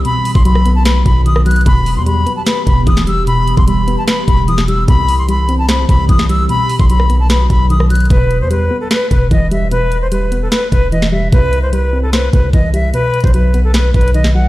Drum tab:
HH |x-----------o-----------x-----------x-----------x-----------x-----------x-----------x--x--x--x--|x-----------o-----------x-----------x-----------x-----------x-----------x-----------x-----------|x-----------x-----------x-----------x-----------x-----------x-----------x-----------x-----------|x-----------o-----------x-----------x-----------x-----------x-----------x-----------x-----------|
SD |------------------------------r-----------------o-----------------------------r-----------------|------------------------------------------------o-----------------------------o-----------------|------------------------------------------------o-----------------------------o-----------------|------------------------------------------------o-----------------------------o-----------------|
BD |------------------o-----------------------------------------o-----------------------------------|o-----------------------------------------------------------o-----------o-----------------------|------------------o-----------------------------------------o-----------------------------------|o-----------------------------------------------------------o-----------o-----------------------|

HH |x-----------o-----------x-----------x-----------x-----------x-----------x-----------x--x--x--x--|x-----------x-----------x-----------------------x-----------x-----------x-----------x-----------|x-----------x-----------x-----------x-----------x-----------x-----------x-----------------------|x-----------x-----------x-----------------------x-----------x-----------x-----------x-----------|
SD |------------------------------r-----------------o-----------------------------r-----------------|------------------------------------------------o-----------------------------------------------|------------------------------------------------o-----------------------------o-----------------|------------------------------------------------o-----------------------------------------------|
BD |------------------o-----------------------------------------o-----------------------------------|o-----------------------------------------------------------o-----------o-----------------------|------------------------------------------------------------o-----------------------------------|o-----------------------------------------------------------o-----------o-----------------------|

HH |x-----------x---x---x---x-----------x-----------x-----------x---x---x---x-----------------------|
SD |------------------------------------------------o-----------------------------o-----------------|
BD |------------------o-----------------------------------------o-----------------------------------|